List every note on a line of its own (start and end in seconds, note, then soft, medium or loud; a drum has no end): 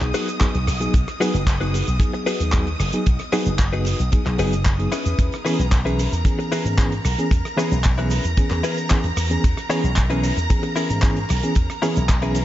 0.00 0.11 B1 loud
0.00 0.37 F#3 medium
0.00 0.38 B3 medium
0.00 0.38 D#4 medium
0.00 0.38 G#4 medium
0.00 5.20 D#6 medium
0.00 muted clean electric guitar stroke medium
0.00 clap soft
0.00 closed hi-hat medium
0.14 0.28 D#4 loud
0.14 0.28 F#4 loud
0.14 0.28 G#4 loud
0.14 0.28 B4 loud
0.14 open hi-hat loud
0.14 ride medium
0.14 cabasa medium
0.28 closed hi-hat medium
0.28 cabasa medium
0.40 0.55 F#3 medium
0.40 0.56 B3 medium
0.40 0.56 D#4 medium
0.40 0.56 G#4 loud
0.40 muted clean electric guitar stroke soft
0.40 kick loud
0.40 clap loud
0.40 closed hi-hat medium
0.40 ride medium
0.40 cabasa medium
0.55 0.64 B1 medium
0.55 closed hi-hat medium
0.67 0.86 B1 loud
0.67 cross-stick medium
0.67 open hi-hat loud
0.67 ride medium
0.67 cabasa medium
0.80 0.95 F#3 medium
0.80 0.95 B3 medium
0.80 0.95 D#4 medium
0.80 0.96 G#4 medium
0.80 closed hi-hat medium
0.80 cabasa medium
0.94 1.04 B1 loud
0.94 kick loud
0.94 closed hi-hat loud
0.94 ride medium
0.94 cabasa medium
1.08 cross-stick medium
1.08 closed hi-hat medium
1.20 1.35 F#3 loud
1.20 1.35 B3 medium
1.20 1.36 D#4 medium
1.20 1.41 D#4 loud
1.20 1.41 F#4 loud
1.20 1.41 G#4 loud
1.20 1.36 G#4 loud
1.20 1.41 B4 loud
1.20 cross-stick medium
1.20 open hi-hat loud
1.20 ride medium
1.20 cabasa medium
1.34 1.81 F#1 loud
1.34 closed hi-hat medium
1.34 cabasa medium
1.47 kick loud
1.47 clap loud
1.47 closed hi-hat loud
1.47 ride medium
1.47 cabasa medium
1.60 1.75 F#3 medium
1.60 1.75 B3 medium
1.60 1.75 D#4 medium
1.60 1.87 D#4 medium
1.60 1.87 F#4 medium
1.60 1.87 G#4 medium
1.60 1.75 G#4 medium
1.60 1.88 B4 medium
1.60 closed hi-hat medium
1.74 open hi-hat loud
1.74 ride medium
1.74 cabasa medium
1.87 1.97 B1 medium
1.87 closed hi-hat medium
1.87 cabasa medium
1.99 2.50 F#3 medium
1.99 2.50 B3 medium
1.99 2.50 D#4 medium
1.99 2.50 G#4 medium
1.99 kick loud
1.99 closed hi-hat loud
1.99 ride medium
1.99 cabasa medium
2.14 muted clean electric guitar stroke medium
2.14 closed hi-hat medium
2.26 2.40 D#4 loud
2.26 2.40 F#4 loud
2.26 2.40 G#4 loud
2.26 2.40 B4 loud
2.26 open hi-hat loud
2.26 ride medium
2.26 cabasa medium
2.40 2.74 D#2 medium
2.40 closed hi-hat medium
2.40 cabasa medium
2.52 2.68 F#3 loud
2.52 2.68 B3 medium
2.52 2.68 D#4 medium
2.52 2.68 G#4 loud
2.52 muted clean electric guitar stroke soft
2.52 kick loud
2.52 clap loud
2.52 closed hi-hat loud
2.52 ride medium
2.52 cabasa medium
2.67 closed hi-hat medium
2.80 2.89 F#1 medium
2.80 cross-stick medium
2.80 open hi-hat loud
2.80 ride medium
2.80 cabasa medium
2.92 3.08 F#3 medium
2.92 3.08 B3 medium
2.92 3.08 D#4 medium
2.92 3.08 G#4 medium
2.92 closed hi-hat medium
2.92 cabasa medium
3.06 3.16 B1 loud
3.06 kick loud
3.06 closed hi-hat loud
3.06 ride medium
3.06 cabasa medium
3.19 cross-stick medium
3.19 closed hi-hat medium
3.32 3.48 F#3 loud
3.32 3.48 B3 medium
3.32 3.48 D#4 medium
3.32 3.53 D#4 loud
3.32 3.53 F#4 loud
3.32 3.53 G#4 loud
3.32 3.48 G#4 loud
3.32 3.53 B4 loud
3.32 cross-stick medium
3.32 open hi-hat loud
3.32 ride loud
3.32 cabasa medium
3.46 3.93 F#1 medium
3.46 closed hi-hat medium
3.46 cabasa medium
3.59 kick loud
3.59 clap loud
3.59 closed hi-hat loud
3.59 ride medium
3.59 cabasa medium
3.73 3.87 F#3 medium
3.73 3.87 B3 medium
3.73 3.88 D#4 medium
3.73 4.00 D#4 medium
3.73 4.00 F#4 medium
3.73 4.00 G#4 medium
3.73 3.88 G#4 medium
3.73 4.00 B4 medium
3.73 closed hi-hat medium
3.85 open hi-hat loud
3.85 ride medium
3.85 cabasa medium
4.00 4.09 B1 medium
4.00 closed hi-hat medium
4.00 cabasa medium
4.12 4.36 F#3 medium
4.12 4.36 B3 medium
4.12 4.37 D#4 medium
4.12 4.37 G#4 medium
4.12 kick loud
4.12 closed hi-hat loud
4.12 ride medium
4.12 cabasa medium
4.26 4.35 B1 loud
4.26 muted clean electric guitar stroke loud
4.26 clap soft
4.26 closed hi-hat medium
4.38 4.86 F#1 medium
4.38 4.54 F#3 medium
4.38 4.54 B3 medium
4.38 4.54 D#4 medium
4.38 4.53 D#4 loud
4.38 4.53 F#4 medium
4.38 4.53 G#4 medium
4.38 4.54 G#4 medium
4.38 4.53 B4 loud
4.38 open hi-hat loud
4.38 ride medium
4.38 cabasa medium
4.53 closed hi-hat medium
4.53 cabasa medium
4.65 muted clean electric guitar stroke soft
4.65 kick loud
4.65 clap loud
4.65 closed hi-hat loud
4.65 ride medium
4.65 cabasa soft
4.78 4.90 F#3 medium
4.78 4.90 B3 medium
4.78 4.91 D#4 medium
4.78 4.91 G#4 medium
4.78 closed hi-hat medium
4.92 5.35 C#4 medium
4.92 5.35 E4 medium
4.92 5.35 G#4 medium
4.92 5.35 B4 loud
4.92 cross-stick medium
4.92 open hi-hat loud
4.92 ride medium
4.92 cabasa medium
5.05 5.15 E2 loud
5.05 closed hi-hat medium
5.05 cabasa medium
5.18 5.29 E2 medium
5.18 12.45 A#5 medium
5.18 kick loud
5.18 closed hi-hat loud
5.18 ride medium
5.18 cabasa soft
5.32 cross-stick medium
5.32 closed hi-hat medium
5.45 5.60 E3 loud
5.45 5.60 B3 medium
5.45 5.60 C#4 medium
5.45 5.65 C#4 medium
5.45 5.65 E4 loud
5.45 5.65 G#4 loud
5.45 5.61 G#4 loud
5.45 5.65 B4 loud
5.45 cross-stick medium
5.45 open hi-hat loud
5.45 ride medium
5.45 cabasa medium
5.59 6.06 B1 medium
5.59 closed hi-hat medium
5.59 cabasa medium
5.72 kick loud
5.72 clap loud
5.72 closed hi-hat loud
5.72 ride medium
5.72 cabasa medium
5.85 6.00 E3 medium
5.85 6.00 B3 medium
5.85 6.00 C#4 medium
5.85 6.12 C#4 medium
5.85 6.12 E4 medium
5.85 6.12 G#4 medium
5.85 6.00 G#4 medium
5.85 6.12 B4 loud
5.85 closed hi-hat medium
5.99 open hi-hat loud
5.99 ride medium
5.99 cabasa medium
6.12 6.21 E2 medium
6.12 closed hi-hat medium
6.12 cabasa medium
6.25 6.75 E3 medium
6.25 6.75 B3 medium
6.25 6.75 C#4 medium
6.25 6.75 G#4 medium
6.25 kick loud
6.25 closed hi-hat medium
6.25 ride medium
6.25 cabasa soft
6.39 muted clean electric guitar stroke medium
6.39 closed hi-hat medium
6.52 6.65 C#4 loud
6.52 6.66 E4 loud
6.52 6.65 G#4 loud
6.52 6.65 B4 loud
6.52 open hi-hat loud
6.52 ride medium
6.52 cabasa medium
6.65 6.99 G#2 medium
6.65 closed hi-hat soft
6.65 cabasa medium
6.77 6.93 E3 medium
6.77 6.93 B3 medium
6.77 6.93 C#4 medium
6.77 6.93 G#4 loud
6.77 muted clean electric guitar stroke soft
6.77 kick loud
6.77 clap loud
6.77 closed hi-hat medium
6.77 ride medium
6.77 cabasa medium
6.92 closed hi-hat medium
7.05 7.15 B1 medium
7.05 cross-stick medium
7.05 open hi-hat loud
7.05 ride medium
7.05 cabasa medium
7.18 7.33 E3 medium
7.18 7.33 B3 medium
7.18 7.33 C#4 medium
7.18 7.33 G#4 medium
7.18 closed hi-hat medium
7.18 cabasa medium
7.31 7.41 E2 loud
7.31 kick loud
7.31 closed hi-hat loud
7.31 ride medium
7.31 cabasa medium
7.45 cross-stick medium
7.45 closed hi-hat medium
7.57 7.72 E3 loud
7.57 7.73 B3 medium
7.57 7.73 C#4 medium
7.57 7.78 C#4 medium
7.57 7.78 E4 loud
7.57 7.73 G#4 loud
7.57 7.78 G#4 loud
7.57 7.78 B4 loud
7.57 cross-stick medium
7.57 open hi-hat medium
7.57 ride loud
7.57 cabasa medium
7.71 8.18 B1 loud
7.71 closed hi-hat medium
7.71 cabasa medium
7.84 kick loud
7.84 clap loud
7.84 closed hi-hat loud
7.84 ride medium
7.84 cabasa soft
7.98 8.12 E3 medium
7.98 8.13 B3 medium
7.98 8.13 C#4 medium
7.98 8.25 C#4 medium
7.98 8.25 E4 medium
7.98 8.13 G#4 medium
7.98 8.25 G#4 medium
7.98 8.25 B4 medium
7.98 closed hi-hat medium
8.11 open hi-hat loud
8.11 ride medium
8.11 cabasa medium
8.24 8.34 E2 medium
8.24 closed hi-hat medium
8.24 cabasa medium
8.37 8.87 E3 medium
8.37 8.88 B3 medium
8.37 8.88 C#4 medium
8.37 8.88 G#4 medium
8.37 kick loud
8.37 closed hi-hat medium
8.37 ride medium
8.37 cabasa medium
8.50 8.60 E2 loud
8.50 muted clean electric guitar stroke medium
8.50 clap soft
8.50 closed hi-hat medium
8.63 8.77 C#4 loud
8.63 8.78 E4 medium
8.63 8.78 G#4 loud
8.63 8.78 B4 loud
8.63 open hi-hat loud
8.63 ride loud
8.63 cabasa medium
8.77 closed hi-hat medium
8.77 cabasa medium
8.90 9.05 E3 loud
8.90 9.06 B3 medium
8.90 9.06 C#4 medium
8.90 9.06 G#4 loud
8.90 muted clean electric guitar stroke soft
8.90 kick loud
8.90 clap loud
8.90 closed hi-hat loud
8.90 ride medium
8.90 cabasa medium
9.04 9.13 E2 medium
9.04 closed hi-hat medium
9.17 9.36 E2 loud
9.17 cross-stick medium
9.17 open hi-hat loud
9.17 ride medium
9.17 cabasa loud
9.30 9.45 E3 medium
9.30 9.45 B3 medium
9.30 9.45 C#4 medium
9.30 9.45 G#4 medium
9.30 closed hi-hat medium
9.30 cabasa medium
9.44 9.54 E2 loud
9.44 kick loud
9.44 closed hi-hat loud
9.44 ride medium
9.44 cabasa medium
9.57 cross-stick medium
9.57 closed hi-hat medium
9.69 9.85 E3 loud
9.69 9.85 B3 medium
9.69 9.85 C#4 medium
9.69 9.90 C#4 loud
9.69 9.90 E4 loud
9.69 9.90 G#4 loud
9.69 9.85 G#4 loud
9.69 9.90 C#5 loud
9.69 cross-stick medium
9.69 open hi-hat loud
9.69 ride loud
9.69 cabasa medium
9.84 10.30 B1 loud
9.84 closed hi-hat medium
9.84 cabasa medium
9.96 kick loud
9.96 clap loud
9.96 closed hi-hat loud
9.96 ride medium
9.96 cabasa medium
10.09 10.24 E3 medium
10.09 10.24 B3 medium
10.09 10.25 C#4 medium
10.09 10.37 C#4 medium
10.09 10.37 E4 medium
10.09 10.25 G#4 medium
10.09 10.37 G#4 medium
10.09 10.37 B4 medium
10.09 closed hi-hat medium
10.23 open hi-hat loud
10.23 ride medium
10.23 cabasa medium
10.36 10.46 E2 medium
10.36 closed hi-hat medium
10.36 cabasa medium
10.49 11.00 E3 medium
10.49 11.00 B3 medium
10.49 11.00 C#4 medium
10.49 11.00 G#4 medium
10.49 kick loud
10.49 closed hi-hat loud
10.49 ride medium
10.49 cabasa medium
10.63 muted clean electric guitar stroke medium
10.63 closed hi-hat medium
10.76 10.90 C#4 loud
10.76 10.90 E4 loud
10.76 10.90 G#4 loud
10.76 10.90 A#4 loud
10.76 open hi-hat loud
10.76 ride loud
10.76 cabasa medium
10.90 11.24 G#2 medium
10.90 closed hi-hat medium
10.90 cabasa medium
11.02 11.18 E3 loud
11.02 11.18 B3 medium
11.02 11.18 C#4 medium
11.02 11.18 G#4 loud
11.02 muted clean electric guitar stroke soft
11.02 kick loud
11.02 clap loud
11.02 closed hi-hat loud
11.02 ride medium
11.02 cabasa medium
11.16 closed hi-hat medium
11.29 11.40 B1 medium
11.29 cross-stick medium
11.29 open hi-hat loud
11.29 ride medium
11.29 cabasa medium
11.43 11.57 E3 medium
11.43 11.57 B3 medium
11.43 11.58 C#4 medium
11.43 11.58 G#4 medium
11.43 closed hi-hat medium
11.43 cabasa medium
11.55 11.66 E2 loud
11.55 kick loud
11.55 closed hi-hat loud
11.55 ride medium
11.55 cabasa medium
11.70 cross-stick medium
11.70 closed hi-hat medium
11.82 11.97 E3 loud
11.82 11.97 B3 medium
11.82 11.98 C#4 medium
11.82 12.03 C#4 loud
11.82 12.03 E4 loud
11.82 12.03 G#4 medium
11.82 11.98 G#4 loud
11.82 12.03 A#4 loud
11.82 cross-stick medium
11.82 open hi-hat loud
11.82 ride medium
11.82 cabasa medium
11.96 12.43 B1 loud
11.96 closed hi-hat medium
11.96 cabasa medium
12.09 kick loud
12.09 clap loud
12.09 closed hi-hat loud
12.09 ride medium
12.09 cabasa medium
12.22 12.37 E3 medium
12.22 12.37 B3 medium
12.22 12.37 C#4 medium
12.22 12.45 C#4 medium
12.22 12.45 E4 medium
12.22 12.37 G#4 medium
12.22 12.45 G#4 medium
12.22 12.45 B4 medium
12.22 closed hi-hat medium
12.34 open hi-hat loud
12.34 ride medium
12.34 cabasa loud